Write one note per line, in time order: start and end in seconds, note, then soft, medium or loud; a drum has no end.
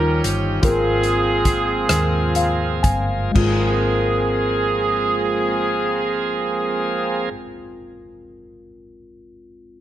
0.00 0.20 D#2 medium
0.00 0.59 D#3 medium
0.00 0.62 F3 soft
0.00 0.62 G3 medium
0.00 0.60 C#4 medium
0.00 0.63 C#4 soft
0.00 0.62 D#4 soft
0.00 0.64 D#4 soft
0.00 0.61 F4 medium
0.00 0.60 G4 medium
0.00 0.63 G4 medium
0.00 0.21 A#4 medium
0.00 0.66 C#5 medium
0.24 0.60 G1 medium
0.24 closed hi-hat medium
0.60 1.85 G#1 medium
0.60 1.85 G#2 soft
0.60 3.32 F3 medium
0.60 3.30 G#3 soft
0.60 3.32 A#3 soft
0.60 0.70 B3 soft
0.60 2.80 C4 medium
0.60 3.32 C4 soft
0.60 3.31 F4 soft
0.60 2.80 F4 medium
0.60 2.79 G#4 medium
0.60 3.32 G#4 medium
0.60 3.32 A#4 medium
0.60 kick medium
0.60 closed hi-hat medium
0.68 3.33 C4 soft
1.03 closed hi-hat soft
1.45 kick medium
1.45 closed hi-hat medium
1.89 2.80 D#2 medium
1.89 cross-stick medium
1.89 closed hi-hat medium
2.35 2.81 F5 medium
2.35 closed hi-hat soft
2.83 3.32 G1 medium
2.83 3.31 G#5 medium
2.83 kick medium
2.83 closed hi-hat medium
3.31 7.29 G#1 medium
3.31 7.29 F3 medium
3.31 7.26 G#3 medium
3.31 7.30 A#3 medium
3.31 7.28 C4 medium
3.31 7.29 C4 medium
3.31 7.29 G#4 medium
3.31 crash medium
3.36 7.30 G#1 medium
3.36 7.30 F4 medium
3.36 7.31 G#4 medium
3.36 7.33 A#4 medium
3.36 kick medium